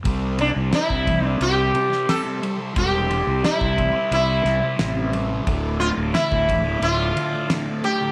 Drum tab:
RD |x-x-x-x-x-x-x-x-|x-x-x-x-x-x-x-x-|x-x-x-x-x-x-x-x-|
SD |----o------oo---|----o-----o-o---|----o-------o---|
BD |o----oo---------|o----oo---------|o----oo---------|